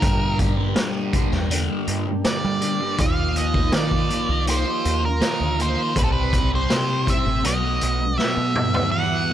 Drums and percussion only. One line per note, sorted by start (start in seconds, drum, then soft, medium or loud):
0.02 kick loud
0.02 closed hi-hat medium
0.39 kick medium
0.39 closed hi-hat medium
0.76 snare loud
0.76 closed hi-hat medium
1.13 kick medium
1.13 closed hi-hat medium
1.32 snare soft
1.51 closed hi-hat medium
1.87 closed hi-hat medium
2.25 snare loud
2.25 closed hi-hat medium
2.62 closed hi-hat medium
2.98 kick loud
2.98 closed hi-hat medium
3.36 closed hi-hat medium
3.54 kick medium
3.72 snare loud
3.72 closed hi-hat medium
3.91 kick medium
4.10 closed hi-hat medium
4.47 closed hi-hat medium
4.85 closed hi-hat medium
5.21 snare loud
5.21 closed hi-hat medium
5.60 closed hi-hat medium
5.96 kick loud
5.96 closed hi-hat medium
6.33 kick medium
6.33 closed hi-hat medium
6.70 snare loud
6.70 closed hi-hat medium
7.07 kick medium
7.07 closed hi-hat medium
7.44 closed hi-hat medium
7.81 closed hi-hat medium
8.19 snare medium
8.56 mid tom medium
8.74 floor tom medium